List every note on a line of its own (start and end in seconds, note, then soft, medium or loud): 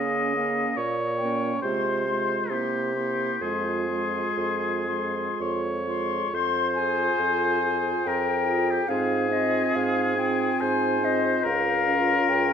0.00 0.68 C#3 medium
0.00 0.33 A#3 soft
0.00 0.34 C#4 soft
0.00 0.78 D#5 medium
0.00 0.33 F5 soft
0.35 0.77 A#3 soft
0.35 0.76 C#4 soft
0.35 0.76 F5 soft
0.76 1.53 A#2 medium
0.76 1.61 C#5 medium
1.17 1.60 G5 soft
1.21 1.62 A#3 soft
1.21 1.62 C#4 soft
1.60 2.40 C3 medium
1.60 2.05 G#3 soft
1.60 2.06 F4 soft
1.60 2.53 C5 medium
1.60 2.02 C6 soft
2.02 2.47 C6 soft
2.07 2.50 G#3 soft
2.07 2.51 F4 soft
2.47 3.31 C3 medium
2.47 2.93 C6 soft
2.51 2.95 A#3 soft
2.51 2.95 E4 soft
2.51 3.44 G4 medium
2.94 3.42 A#3 soft
2.94 3.42 E4 soft
2.94 3.39 C6 soft
3.40 4.26 F2 medium
3.40 3.89 G#3 soft
3.40 3.88 F4 soft
3.40 5.40 G#4 medium
3.40 3.86 C6 soft
3.87 4.88 G#3 soft
3.87 4.87 F4 soft
3.87 4.86 C6 soft
4.37 5.29 F2 soft
4.87 5.86 G#3 soft
4.87 5.87 F4 soft
4.87 5.60 C6 soft
5.40 6.24 F2 soft
5.40 6.36 C#5 medium
5.87 6.32 G#3 soft
5.87 6.33 F4 soft
5.87 6.31 C6 soft
6.32 7.10 F2 medium
6.32 8.09 C5 loud
6.32 6.73 C6 medium
6.75 7.61 F4 medium
6.75 7.62 G#4 medium
6.75 8.05 G#5 medium
7.20 7.96 F2 medium
7.61 8.46 F4 soft
7.61 8.47 G#4 soft
8.04 8.81 F2 medium
8.04 8.72 A#4 medium
8.04 8.90 G5 medium
8.48 8.88 F4 soft
8.48 8.90 G#4 soft
8.70 8.89 G4 medium
8.88 9.65 G#2 medium
8.88 9.30 C4 medium
8.88 9.32 F4 medium
8.88 10.62 G#4 medium
8.88 9.33 F5 medium
9.31 10.15 C4 medium
9.31 10.17 F4 medium
9.31 9.76 D#5 medium
9.75 10.51 G#2 medium
9.75 10.16 F5 medium
10.17 11.01 C4 medium
10.17 11.01 F4 medium
10.17 10.61 G5 medium
10.59 11.35 G#2 medium
10.59 11.45 C5 medium
10.59 11.06 G#5 medium
11.02 11.44 C4 medium
11.02 11.45 F4 medium
11.02 11.48 D#5 medium
11.43 12.19 C#2 medium
11.43 12.53 A#4 loud
11.43 12.30 F5 medium
11.87 12.53 C#4 medium
11.87 12.53 F4 medium
12.29 12.53 C#2 medium
12.29 12.53 G5 medium